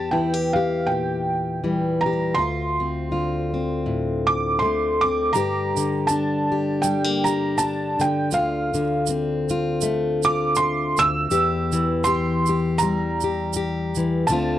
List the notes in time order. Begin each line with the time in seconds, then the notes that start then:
Already playing: E2 G4 A5
0.11 E3 E4 G5
0.34 G4
0.53 G4 F5
0.86 A#2 G5
1.64 E3 G3
2.01 A#5
2.06 G4
2.35 D2 C6
2.39 F4
2.80 C4
3.11 D3 F4
3.54 C4
3.86 A2
4.27 D6
4.59 D3 A3 C6
5.01 C4 D6
5.33 G2 G4 A#5, shaker
5.77 D3, shaker
6.07 D4 A5, shaker
6.52 G4
6.82 G3 G5, shaker
7.04 A#3
7.24 G4 A#5, shaker
7.58 D4 A5, shaker
8.00 D3 G5, shaker
8.31 D2 F4 F5, shaker
8.74 D3, shaker
9.06 C4, shaker
9.49 F4, shaker
9.81 A3, shaker
10.23 F4 D6, shaker
10.55 C6, shaker
10.97 D2 E6, shaker
11.31 E2 G4, shaker
11.72 E3, shaker
12.04 G4 C6, shaker
12.46 G4, shaker
12.78 A#5, shaker
12.82 G3
13.21 G4, shaker
13.53 G4, shaker
13.95 E3, shaker
14.27 D2 D3 A3 A5, shaker
14.31 C4 F4